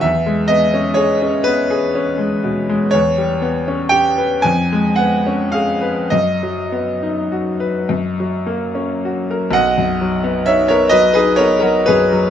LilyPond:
<<
  \new Staff \with { instrumentName = "Grand piano" } { \time 6/8 \key b \major \tempo 4. = 40 e''8 dis''8 cis''8 b'4. | cis''4 g''8 gis''8 fis''8 eis''8 | dis''2~ dis''8 r8 | <dis'' fis''>4 <cis'' e''>16 <ais' cis''>16 <b' dis''>16 <gis' b'>16 <ais' cis''>16 <fis' ais'>16 <gis' b'>8 | }
  \new Staff \with { instrumentName = "Grand piano" } { \time 6/8 \key b \major e,16 gis16 b16 cis'16 gis'16 cis'16 b16 gis'16 cis'16 gis16 b,16 gis16 | e,16 g16 b16 cis'16 g'16 b'16 eis,16 gis16 b16 cis'16 gis'16 b'16 | fis,16 fis16 b16 dis'16 fis'16 b'16 fis,16 fis16 ais16 cis'16 fis'16 ais'16 | b,,16 fis,16 fis16 b16 dis'16 b16 fis16 dis'16 b16 fis16 fis,16 fis16 | }
>>